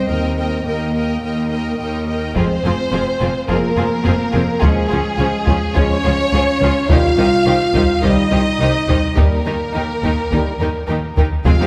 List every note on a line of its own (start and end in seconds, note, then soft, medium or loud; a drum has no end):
0.08 0.55 D#2 soft
0.08 0.58 D#2 soft
0.08 0.64 C4 soft
0.08 0.36 A#4 soft
0.08 0.37 D#5 soft
0.08 0.35 G5 soft
0.36 0.64 A#4 soft
0.36 0.65 D#5 soft
0.36 0.64 G5 soft
0.64 1.15 D#2 soft
0.64 2.07 A#3 soft
0.64 0.92 A#4 soft
0.64 0.94 D#5 soft
0.64 0.92 G5 soft
0.93 1.21 A#4 soft
0.93 1.23 D#5 soft
0.93 1.20 G5 soft
1.22 1.72 D#2 soft
1.22 1.50 A#4 soft
1.22 1.51 D#5 soft
1.22 1.49 G5 soft
1.50 1.78 A#4 soft
1.50 1.79 D#5 soft
1.50 1.78 G5 soft
1.78 2.28 D#2 soft
1.78 2.07 A#4 soft
1.78 2.07 D#5 soft
1.78 2.06 G5 soft
2.08 2.35 A#4 soft
2.08 2.35 D#5 soft
2.08 2.35 G5 soft
2.35 2.43 F1 soft
2.35 2.43 F2 soft
2.35 2.45 F3 soft
2.35 2.56 F3 soft
2.35 2.56 G#3 soft
2.35 3.45 C4 medium
2.35 2.45 C4 soft
2.35 2.44 F4 soft
2.35 2.43 G#4 soft
2.35 3.45 C5 medium
2.35 taiko soft
2.64 2.72 F1 soft
2.64 2.72 F2 soft
2.64 2.74 F3 soft
2.64 2.73 C4 soft
2.64 2.73 F4 soft
2.64 2.72 G#4 soft
2.92 3.00 F1 soft
2.92 3.00 F2 soft
2.92 3.01 F3 soft
2.92 3.01 C4 soft
2.92 3.01 F4 soft
2.92 3.01 G#4 soft
3.20 3.29 F1 soft
3.20 3.28 F2 soft
3.20 3.28 F3 soft
3.20 3.29 C4 soft
3.20 3.29 F4 soft
3.20 3.29 G#4 soft
3.48 3.57 F1 soft
3.48 3.56 F2 soft
3.48 3.57 F3 soft
3.48 3.69 F3 soft
3.48 3.69 G#3 soft
3.48 4.63 A#3 medium
3.48 3.58 C4 soft
3.48 3.57 F4 soft
3.48 3.57 G#4 soft
3.48 4.61 A#4 medium
3.77 3.85 F1 soft
3.77 3.85 F2 soft
3.77 3.86 F3 soft
3.77 3.86 C4 soft
3.77 3.85 F4 soft
3.77 3.85 G#4 soft
4.05 4.14 F1 soft
4.05 4.13 F2 soft
4.05 4.14 F3 soft
4.05 4.14 C4 soft
4.05 4.13 F4 soft
4.05 4.13 G#4 soft
4.32 4.42 F1 soft
4.32 4.42 F2 soft
4.32 4.42 F3 soft
4.32 4.43 C4 soft
4.32 4.40 F4 soft
4.32 4.40 G#4 soft
4.60 4.70 C#2 soft
4.60 4.70 C#2 medium
4.60 4.83 F3 soft
4.60 4.71 F3 soft
4.60 5.74 G#3 medium
4.60 4.71 C#4 soft
4.60 4.68 F4 soft
4.60 4.68 G#4 soft
4.60 5.76 G#4 medium
4.60 taiko medium
4.64 4.83 G#3 soft
4.88 4.99 C#2 medium
4.88 5.00 C#2 medium
4.88 5.00 F3 soft
4.88 5.00 C#4 soft
4.88 4.97 F4 soft
4.88 4.96 G#4 soft
5.17 5.27 C#2 medium
5.17 5.27 C#2 soft
5.17 5.28 F3 soft
5.17 5.28 C#4 soft
5.17 5.25 F4 soft
5.17 5.25 G#4 soft
5.46 5.55 C#2 soft
5.46 5.56 C#2 soft
5.46 5.57 F3 soft
5.46 5.56 C#4 soft
5.46 5.54 F4 soft
5.46 5.54 G#4 soft
5.46 taiko medium
5.75 5.84 C#2 medium
5.75 5.85 C#2 medium
5.75 5.96 F3 medium
5.75 5.84 F3 soft
5.75 5.96 G#3 medium
5.75 6.90 C#4 medium
5.75 5.84 C#4 soft
5.75 5.83 F4 medium
5.75 5.83 G#4 soft
5.75 6.90 C#5 medium
5.75 taiko medium
6.04 6.12 C#2 soft
6.04 6.13 C#2 medium
6.04 6.14 F3 soft
6.04 6.13 C#4 soft
6.04 6.12 F4 soft
6.04 6.12 G#4 soft
6.32 6.40 C#2 medium
6.32 6.40 C#2 soft
6.32 6.42 F3 soft
6.32 6.42 C#4 soft
6.32 6.42 F4 soft
6.32 6.42 G#4 soft
6.60 6.68 C#2 medium
6.60 6.69 C#2 medium
6.60 6.70 F3 soft
6.60 6.70 C#4 soft
6.60 6.72 F4 soft
6.60 6.72 G#4 soft
6.60 taiko medium
6.89 6.97 C2 medium
6.89 6.98 C2 medium
6.89 7.09 D#3 medium
6.89 6.98 D#3 soft
6.89 7.09 G3 medium
6.89 6.98 D#4 medium
6.89 8.03 F4 medium
6.89 6.99 G4 medium
6.89 6.99 C5 soft
6.89 8.04 F5 medium
6.89 taiko medium
7.17 7.25 C2 medium
7.17 7.26 C2 medium
7.17 7.26 D#3 soft
7.17 7.26 D#4 soft
7.17 7.27 G4 soft
7.17 7.26 C5 soft
7.46 7.54 C2 medium
7.46 7.54 C2 soft
7.46 7.54 D#3 soft
7.46 7.54 D#4 soft
7.46 7.55 G4 soft
7.46 7.55 C5 soft
7.74 7.82 C2 medium
7.74 7.82 D#3 soft
7.74 7.82 D#4 soft
7.74 7.83 G4 soft
7.74 7.84 C5 soft
7.74 taiko medium
8.02 8.10 C2 medium
8.02 8.12 C2 soft
8.02 8.10 D#3 soft
8.02 8.23 D#3 soft
8.02 8.23 G3 medium
8.02 8.10 D#4 soft
8.02 9.15 D#4 medium
8.02 8.13 G4 soft
8.02 8.12 C5 soft
8.02 9.18 D#5 medium
8.02 taiko medium
8.31 8.39 C2 soft
8.31 8.40 C2 soft
8.31 8.40 D#3 soft
8.31 8.39 D#4 soft
8.31 8.40 G4 soft
8.31 8.40 C5 soft
8.59 8.67 C2 soft
8.59 8.70 C2 soft
8.59 8.68 D#3 soft
8.59 8.68 D#4 soft
8.59 8.70 G4 soft
8.59 8.71 C5 soft
8.88 8.96 C2 soft
8.88 8.98 C2 soft
8.88 8.96 D#3 soft
8.88 8.96 D#4 soft
8.88 8.97 G4 soft
8.88 8.96 C5 soft
8.88 taiko medium
9.16 9.25 D#2 soft
9.16 9.26 D#2 medium
9.16 9.25 D#3 soft
9.16 9.38 D#3 soft
9.16 9.37 G3 soft
9.16 11.17 A#3 medium
9.16 9.25 D#4 soft
9.16 9.24 G4 soft
9.16 9.25 A#4 soft
9.16 11.17 A#4 medium
9.16 taiko medium
9.46 9.54 D#2 soft
9.46 9.55 D#2 soft
9.46 9.54 D#3 soft
9.46 9.54 D#4 soft
9.46 9.55 G4 soft
9.46 9.55 A#4 soft
9.74 9.82 D#2 soft
9.74 9.83 D#2 soft
9.74 9.82 D#3 soft
9.74 9.82 D#4 soft
9.74 9.83 G4 soft
9.74 9.84 A#4 soft
10.02 10.10 D#2 soft
10.02 10.11 D#2 soft
10.02 10.13 D#3 soft
10.02 10.12 D#4 soft
10.02 10.11 G4 soft
10.02 10.12 A#4 soft
10.02 taiko medium
10.31 10.39 D#2 soft
10.31 10.51 D#3 soft
10.31 10.41 D#3 soft
10.31 10.51 G3 soft
10.31 10.41 D#4 soft
10.31 10.40 G4 soft
10.31 10.40 A#4 soft
10.31 taiko medium
10.59 10.67 D#2 soft
10.59 10.68 D#2 soft
10.59 10.69 D#3 soft
10.59 10.70 D#4 soft
10.59 10.69 G4 soft
10.59 10.68 A#4 soft
10.87 10.96 D#2 soft
10.87 10.97 D#2 soft
10.87 10.98 D#3 soft
10.87 10.97 D#4 soft
10.87 10.95 G4 soft
10.87 10.95 A#4 soft
11.16 11.24 D#2 soft
11.16 11.25 D#2 soft
11.16 11.26 D#3 soft
11.16 11.27 D#4 soft
11.16 11.26 G4 soft
11.16 11.25 A#4 soft
11.16 taiko medium
11.45 11.50 F1 medium
11.45 11.51 F2 soft
11.45 11.67 C3 soft
11.45 11.67 G#3 soft
11.45 11.52 G#3 medium
11.45 11.52 C4 soft
11.45 11.67 F4 medium
11.45 11.51 F4 medium
11.45 11.51 G#4 soft
11.45 11.67 F5 medium
11.45 taiko medium
11.59 11.65 F2 soft
11.59 11.67 G#3 soft
11.59 11.67 C4 soft
11.59 11.66 D#4 soft
11.59 11.66 G4 soft